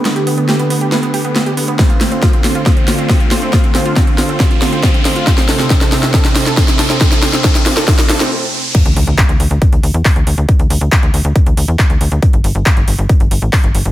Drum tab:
CC |----------------|----------------|----------------|----------------|
HH |xxoxxxoxxxoxxxox|xxoxxxoxxxoxoxox|xxoxxxoxxxoxxxox|xxoxxxoxxxoxoxox|
CP |----------------|----------------|----------------|----------------|
SD |o---o---o---o---|o-o-o-o-o-o-o-o-|o-o-o-o-o-o-o-o-|oooooooooooooooo|
BD |----------------|o---o---o---o---|o---o---o---o---|o---o---o---o---|

CC |----------------|x---------------|----------------|----------------|
HH |xxoxxxoxxxox----|xxoxxxoxxxoxoxox|xxoxxxoxxxoxxxox|xxoxxxoxxxoxoxox|
CP |----------------|----x-------x---|----x-------x---|----x-------x---|
SD |oooooooooooo----|----------------|----------------|----------------|
BD |o---o---o-------|o---o---o---o---|o---o---o---o---|o---o---o---o---|